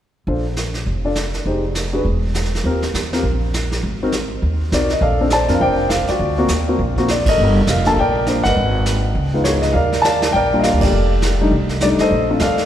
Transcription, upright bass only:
0.27 0.83 A#1 medium
0.86 1.43 F1 medium
1.45 2.02 F1 medium
2.05 2.61 E1 medium
2.64 2.92 D#2 medium
2.94 3.22 E2 medium
3.23 3.80 A#1 medium
3.83 4.39 G#1 medium
4.42 4.70 D#2 medium
4.72 4.99 B1 medium
5.01 5.45 A#1 medium
5.49 5.60 F2 medium
5.61 6.05 F1 medium
6.09 muted upright bass stroke soft
6.19 6.47 D2 medium
6.49 6.77 D#2 medium
6.79 7.23 A#1 medium
7.26 7.37 G#1 medium
7.38 7.66 G1 medium
7.67 7.95 F1 medium
7.97 8.41 A#1 medium
8.45 8.56 G1 medium
8.57 9.13 G#1 medium
9.15 9.71 C#2 medium
9.74 10.31 D#2 medium
10.34 10.70 A#1 medium
10.73 10.82 D2 medium
10.83 10.91 G1 medium
10.92 11.49 F1 medium
11.51 11.96 C2 medium
11.99 muted upright bass stroke soft
12.11 12.38 A#1 medium
12.40 12.65 F2 medium

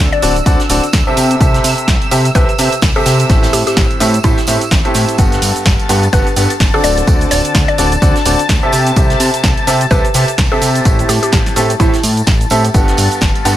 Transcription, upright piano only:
0.00 0.20 D3 medium
0.00 0.20 C4 medium
0.00 0.20 F#4 medium
0.00 0.20 A4 medium
0.00 0.20 D5 medium
0.22 0.35 D3 medium
0.22 0.35 C4 medium
0.22 0.35 F#4 medium
0.22 0.35 A4 medium
0.22 0.35 D5 medium
0.46 0.58 D3 loud
0.46 0.58 C4 medium
0.46 0.58 F#4 medium
0.46 0.58 A4 medium
0.46 0.58 D5 loud
0.70 0.82 D3 medium
0.70 0.82 C4 medium
0.70 0.82 F#4 medium
0.70 0.82 A4 medium
0.70 0.82 D5 medium
1.07 1.38 C3 medium
1.07 1.38 C4 medium
1.07 1.38 G4 medium
1.07 1.38 A4 medium
1.07 1.38 E5 medium
1.41 2.09 C3 medium
1.41 2.09 C4 medium
1.41 2.09 G4 medium
1.41 2.09 A4 medium
1.41 2.09 E5 medium
2.11 2.24 C3 medium
2.11 2.24 C4 medium
2.11 2.24 G4 medium
2.11 2.24 A4 medium
2.11 2.24 E5 medium
2.35 2.47 C3 loud
2.35 2.47 C4 medium
2.35 2.47 G4 medium
2.35 2.47 A4 medium
2.35 2.47 E5 loud
2.59 2.71 C3 medium
2.59 2.71 C4 medium
2.59 2.71 G4 medium
2.59 2.71 A4 medium
2.59 2.71 E5 medium
2.96 3.27 C3 medium
2.96 3.27 C4 medium
2.96 3.27 G4 medium
2.96 3.27 A4 medium
2.96 3.27 E5 medium
3.29 3.98 A2 medium
3.29 3.98 C4 medium
3.29 3.98 G4 medium
3.29 3.98 A4 medium
3.29 3.98 E5 medium
4.00 4.13 A2 medium
4.00 4.12 C4 medium
4.00 4.12 G4 medium
4.00 4.12 A4 medium
4.00 4.13 E5 medium
4.24 4.36 A2 loud
4.24 4.36 C4 medium
4.24 4.36 G4 medium
4.24 4.36 A4 medium
4.24 4.36 E5 loud
4.48 4.60 A2 medium
4.48 4.60 C4 medium
4.48 4.60 G4 medium
4.48 4.60 A4 medium
4.48 4.60 E5 medium
4.85 5.16 A2 medium
4.85 5.16 C4 medium
4.85 5.16 G4 medium
4.85 5.16 A4 medium
4.85 5.16 E5 medium
5.18 5.87 G2 medium
5.18 5.87 B3 medium
5.18 5.87 G4 medium
5.18 5.87 A4 medium
5.18 5.87 F#5 medium
5.89 6.01 G2 medium
5.89 6.01 B3 medium
5.89 6.01 G4 medium
5.89 6.01 A4 medium
5.89 6.01 F#5 medium
6.13 6.25 G2 loud
6.13 6.25 B3 medium
6.13 6.25 G4 medium
6.13 6.25 A4 medium
6.13 6.25 F#5 loud
6.37 6.49 G2 medium
6.37 6.49 B3 medium
6.37 6.49 G4 medium
6.37 6.49 A4 medium
6.37 6.49 F#5 medium
6.74 7.05 D3 medium
6.74 7.05 C4 medium
6.74 7.05 F#4 medium
6.74 7.05 A4 medium
6.74 7.05 D5 medium
7.07 7.76 D3 medium
7.07 7.76 C4 medium
7.07 7.76 F#4 medium
7.07 7.76 A4 medium
7.07 7.76 D5 medium
7.78 7.90 D3 medium
7.78 7.90 C4 medium
7.78 7.90 F#4 medium
7.78 7.90 A4 medium
7.78 7.90 D5 medium
8.02 8.14 D3 loud
8.02 8.14 C4 loud
8.02 8.14 F#4 medium
8.02 8.14 A4 medium
8.02 8.14 D5 loud
8.26 8.38 D3 medium
8.26 8.38 C4 medium
8.26 8.38 F#4 medium
8.26 8.38 A4 medium
8.26 8.38 D5 medium
8.63 8.94 C3 medium
8.63 8.94 C4 medium
8.63 8.94 G4 medium
8.63 8.94 A4 medium
8.63 8.94 E5 medium
8.96 9.65 C3 medium
8.96 9.65 C4 medium
8.96 9.65 G4 medium
8.96 9.65 A4 medium
8.96 9.65 E5 medium
9.67 9.79 C3 medium
9.67 9.79 C4 medium
9.67 9.79 G4 medium
9.67 9.79 A4 medium
9.67 9.79 E5 medium
9.91 10.03 C3 loud
9.91 10.03 C4 medium
9.91 10.03 G4 medium
9.91 10.03 A4 medium
9.91 10.03 E5 loud
10.15 10.27 C3 medium
10.15 10.27 C4 medium
10.15 10.27 G4 medium
10.15 10.27 A4 medium
10.15 10.27 E5 medium
10.52 10.83 C3 medium
10.52 10.83 C4 medium
10.52 10.83 G4 medium
10.52 10.83 A4 medium
10.52 10.83 E5 medium
10.85 11.54 A2 medium
10.85 11.54 C4 medium
10.85 11.54 G4 medium
10.85 11.54 A4 medium
10.85 11.54 E5 medium
11.56 11.68 A2 medium
11.56 11.68 C4 medium
11.56 11.68 G4 medium
11.56 11.68 A4 medium
11.56 11.68 E5 medium
11.80 11.92 A2 loud
11.80 11.92 C4 medium
11.80 11.92 G4 medium
11.80 11.92 A4 medium
11.80 11.92 E5 loud
12.51 12.63 C4 medium
12.51 12.63 G4 medium
12.51 12.63 A4 medium
12.51 12.63 E5 loud
12.74 13.43 G2 medium
12.74 13.43 B3 medium
12.74 13.43 G4 medium
12.74 13.43 A4 medium
12.74 13.43 F#5 medium
13.45 13.57 G2 medium
13.45 13.57 B3 medium
13.45 13.57 G4 medium
13.45 13.57 A4 medium
13.45 13.57 F#5 medium

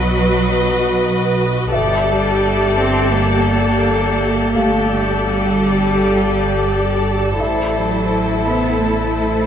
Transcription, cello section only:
0.00 1.38 F#3 medium
2.08 2.75 G3 medium
2.78 3.14 C4 medium
3.14 4.56 A#3 medium
4.56 5.26 A3 medium
5.27 7.03 G3 medium
7.74 8.40 F#3 soft
8.44 8.80 B3 medium
8.80 9.46 A3 soft

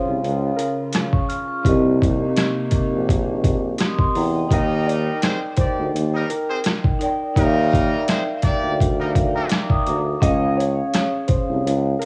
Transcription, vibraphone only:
0.00 0.15 C#4 medium
0.00 0.15 G#4 medium
0.00 0.16 C#5 medium
0.00 0.17 F5 loud
1.13 1.28 C#6 medium
1.29 1.47 C#6 medium
1.29 1.48 F6 medium
1.48 1.82 C#6 medium
1.63 3.00 C4 medium
1.63 3.01 G4 medium
1.63 3.02 A#4 medium
1.68 3.03 D#5 medium
3.79 3.98 C6 medium
3.79 3.98 D#6 medium
3.99 4.14 C6 medium
4.16 4.34 G5 medium
4.16 4.34 A#5 medium
4.35 4.69 D#5 medium
4.35 4.52 G5 medium
4.49 5.86 D#4 medium
4.49 5.87 A#4 medium
4.54 5.88 G5 loud
6.99 7.33 D#4 medium
6.99 7.34 A#4 medium
6.99 7.36 D5 medium
7.04 7.36 G5 medium
7.34 8.71 D#4 medium
7.34 8.72 A#4 medium
7.34 8.73 D5 medium
7.39 7.45 E5 medium
7.45 8.77 F5 loud
9.35 9.50 G5 medium
9.35 9.50 A#5 medium
9.51 9.70 A#5 medium
9.51 9.69 D6 medium
9.71 9.86 D#6 medium
9.87 10.06 A#5 medium
9.87 10.05 D6 medium
10.06 10.40 D#6 medium
10.20 11.58 C#4 medium
10.20 11.58 G#4 medium
10.20 11.59 C#5 medium
10.25 11.60 F5 loud

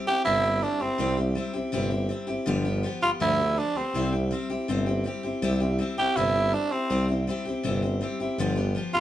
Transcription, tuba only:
0.26 0.65 G1 medium
0.80 0.88 G1 medium
0.99 1.38 C2 medium
1.54 1.62 C2 medium
1.73 2.12 G1 medium
2.28 2.36 G1 medium
2.47 2.86 G1 medium
3.02 3.10 G1 medium
3.20 3.59 D2 medium
3.76 3.83 D2 medium
3.94 4.33 C2 loud
4.49 4.57 C2 medium
4.68 5.07 G1 medium
5.24 5.31 G1 medium
5.42 5.81 C2 loud
5.97 6.05 C2 medium
6.16 6.55 G1 medium
6.90 7.29 C2 medium
7.45 7.53 C2 medium
7.64 8.02 G1 medium
8.19 8.26 G1 medium
8.38 8.76 G1 medium
8.93 9.00 G1 medium

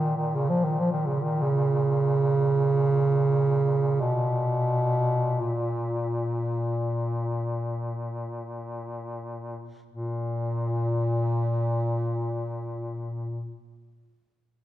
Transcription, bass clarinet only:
0.00 0.15 D#3 medium
0.18 0.37 D#3 medium
0.35 0.51 C#3 medium
0.50 0.66 F3 medium
0.64 0.81 D#3 medium
0.80 0.92 F3 medium
0.92 1.08 D#3 medium
1.06 1.24 C#3 medium
1.22 1.44 D#3 medium
1.42 4.02 C#3 medium
4.01 5.42 B2 medium
5.41 8.46 A#2 medium
9.90 13.59 A#2 medium

